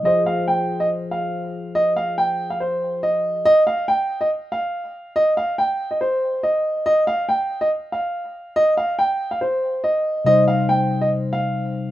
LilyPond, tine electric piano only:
\new Staff \with { instrumentName = "Tine electric piano" } { \time 4/4 \key f \dorian \tempo 4 = 141 <f f' aes' c''>1~ | <f f' aes' c''>1 | r1 | r1 |
r1 | r1 | <c g ees' c''>1 | }